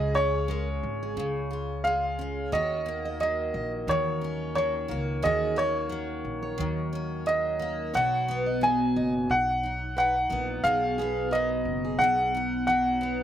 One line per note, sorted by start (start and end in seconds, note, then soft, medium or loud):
0.00 0.79 C#2 medium
0.00 1.16 C#3 medium
0.00 0.47 G#3 medium
0.00 0.14 C#4 medium
0.00 1.49 F4 medium
0.00 0.14 G#4 medium
0.00 2.52 G#4 medium
0.00 0.15 D#5 medium
0.14 2.18 C#4 medium
0.14 0.48 G#4 medium
0.14 1.81 C#5 medium
0.48 1.83 G#3 medium
0.48 0.67 A#4 medium
0.83 1.14 G#1 medium
1.03 1.48 G#4 medium
1.16 2.48 C#2 medium
1.16 2.52 C#3 medium
1.51 2.60 F4 soft
1.84 2.60 G#3 medium
1.84 2.48 F5 medium
2.19 2.85 C#4 medium
2.52 3.50 D#2 loud
2.52 3.88 D#3 medium
2.52 5.23 F#4 medium
2.52 2.85 C#5 medium
2.52 3.19 D#5 medium
2.86 4.87 A#3 medium
3.05 3.37 D#5 medium
3.20 4.55 F#3 medium
3.20 3.90 D#5 medium
3.54 3.85 A#1 medium
3.54 3.72 D#5 medium
3.87 4.85 D#2 medium
3.87 5.22 D#3 medium
3.87 4.54 C#5 medium
4.21 6.91 C#4 soft
4.55 5.89 F#3 medium
4.55 5.25 C#5 medium
4.55 4.73 C#5 medium
4.88 5.21 C#2 medium
4.88 5.55 A#3 medium
4.88 5.07 A#4 medium
5.23 6.21 D#2 loud
5.23 6.57 D#3 medium
5.23 7.95 F#4 medium
5.23 5.57 G#4 medium
5.23 5.58 D#5 medium
5.56 7.58 A#3 medium
5.56 5.89 A#4 medium
5.56 7.32 C#5 medium
5.89 7.26 F#3 medium
5.89 6.08 A#4 medium
6.25 6.56 A#1 medium
6.42 6.89 C#5 medium
6.58 7.90 D#2 medium
6.58 7.94 D#3 medium
6.93 8.01 C#4 medium
7.26 8.61 F#3 medium
7.26 7.96 D#5 medium
7.59 8.01 A#3 medium
7.94 8.92 B1 medium
7.94 9.29 B2 medium
7.94 10.64 F#4 medium
7.94 8.26 C#5 medium
7.94 8.58 F#5 medium
8.28 10.29 B3 medium
8.46 8.78 D#5 medium
8.61 9.96 F#3 medium
8.61 9.32 G#5 medium
8.96 9.27 F#1 medium
8.96 9.13 D#5 medium
9.29 10.27 B1 medium
9.29 9.97 F#5 medium
9.63 12.33 D#4 soft
9.97 11.32 F#3 medium
9.97 10.14 B4 medium
9.97 10.61 F#5 medium
10.29 10.62 A#1 medium
10.29 10.98 B3 medium
10.29 10.48 A#4 medium
10.64 11.62 B1 medium
10.64 12.00 B2 medium
10.64 13.23 F#4 medium
10.64 10.96 G#4 medium
10.64 11.33 F5 medium
10.98 13.00 B3 medium
10.98 11.30 G#4 medium
11.31 12.66 F#3 medium
11.31 11.49 A#4 medium
11.31 12.02 D#5 medium
11.65 11.96 F#1 medium
11.85 12.30 G#4 medium
11.99 13.23 B1 medium
11.99 13.23 B2 medium
11.99 12.63 F#5 loud
12.35 13.23 D#4 medium
12.67 13.23 F#3 medium
12.67 13.23 F#5 medium
13.01 13.23 B3 medium